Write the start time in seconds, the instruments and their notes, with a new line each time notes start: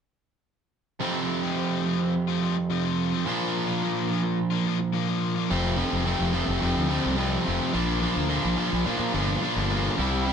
1.00 overdriven electric guitar F2 C3 F3 A3 C4 F4
1.43 overdriven electric guitar F3 A3 C4 F4
1.56 overdriven electric guitar F2 C3 F3 A3 C4 F4
1.86 overdriven electric guitar F3 A3 C4 F4
2.01 muted overdriven electric guitar stroke
2.28 overdriven electric guitar F3 A3 C4 F4
2.42 overdriven electric guitar F3 A3 C4 F4
2.57 muted overdriven electric guitar stroke
2.70 overdriven electric guitar F2 C3 F3 A3 C4 F4
2.84 overdriven electric guitar F3 A3 C4 F4
3.12 overdriven electric guitar F3 A3 C4 F4
3.25 overdriven electric guitar A#2 F3 A#3 D4 F4
3.67 overdriven electric guitar A#3 D4 F4
3.82 overdriven electric guitar A#2 F3 A#3 D4 F4
4.09 overdriven electric guitar F3 A#3 D4 F4
4.23 muted overdriven electric guitar stroke
4.50 overdriven electric guitar A#3 D4 F4
4.66 overdriven electric guitar F3 A#3 D4 F4
4.79 muted overdriven electric guitar stroke
4.93 overdriven electric guitar A#2 F3 A#3 D4 F4
5.07 overdriven electric guitar A#3 D4 F4
5.35 overdriven electric guitar A#3 D4 F4
5.50 fingered electric bass F1, overdriven electric guitar F2 C3 F3 A3 C4 F4
5.78 overdriven electric guitar F2 C3 F3 A3 C4 F4
5.93 fingered electric bass F1
6.06 overdriven electric guitar F2 C3 F3 A3 C4 F4
6.20 fingered electric bass F1
6.32 overdriven electric guitar F2 C3 F3 A3 C4 F4
6.48 fingered electric bass F1
6.61 fingered electric bass F1, overdriven electric guitar F2 C3 F3 A3 C4 F4
6.77 fingered electric bass D2
6.89 overdriven electric guitar F2 C3 F3 A3 C4 F4
7.06 fingered electric bass C2
7.16 overdriven electric guitar F2 C3 F3 A3 C4 F4
7.44 fingered electric bass F1, overdriven electric guitar F2 C3 F3 A3 C4 F4
7.72 fingered electric bass A#1, overdriven electric guitar A#2 F3 A#3 D4 F4
8.00 overdriven electric guitar A#2 F3 A#3 D4 F4
8.16 fingered electric bass D2
8.29 overdriven electric guitar A#2 F3 A#3 D4 F4
8.45 fingered electric bass A#1
8.57 overdriven electric guitar A#2 F3 A#3 D4 F4
8.73 fingered electric bass A#1
8.85 overdriven electric guitar A#2 F3 A#3 D4 F4, fingered electric bass A#2
8.99 fingered electric bass A#2
9.14 fingered electric bass G1, overdriven electric guitar A#2 F3 A#3 D4 F4
9.41 overdriven electric guitar A#2 F3 A#3 D4 F4
9.56 fingered electric bass G1
9.69 overdriven electric guitar A#2 F3 A#3 D4 F4
9.96 fingered electric bass C2, overdriven electric guitar C3 G3 C4 E4
10.25 overdriven electric guitar C3 G3 C4 E4